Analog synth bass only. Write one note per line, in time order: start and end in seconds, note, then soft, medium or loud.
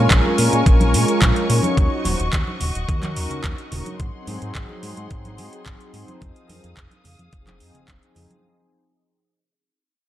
0.11 0.22 A#1 medium
0.39 0.50 A#2 medium
0.53 0.63 A#2 medium
0.66 0.96 A#1 medium
0.94 1.05 A#2 medium
1.22 1.33 A#1 medium
1.50 1.61 A#2 medium
1.77 1.88 D#2 medium
2.05 2.16 D#1 medium
2.20 2.30 D#1 medium
2.33 2.44 D#2 medium
2.61 2.72 D#1 medium
2.75 2.86 D#1 medium
2.89 3.18 D#2 medium
3.16 3.27 D#1 medium
3.31 3.41 D#2 soft
3.44 3.55 D#2 medium
3.72 3.83 D#1 medium
4.00 4.11 G#1 loud
4.27 4.38 G#2 medium
4.42 4.52 G#2 medium
4.55 4.66 G#1 medium
4.83 4.94 G#2 medium
4.98 5.08 G#2 medium
5.11 5.40 G#1 medium
5.38 5.49 G#2 medium
5.66 5.77 G#1 medium
5.94 6.05 G#2 medium
6.22 6.33 F1 medium
6.49 6.60 F2 medium
6.64 6.74 F2 medium
6.77 6.88 F1 medium
7.05 7.16 F2 medium
7.19 7.30 F2 medium
7.33 7.62 F1 medium
7.60 7.72 F2 medium
7.75 7.86 F1 soft
7.88 7.99 F1 medium
8.16 8.27 F2 medium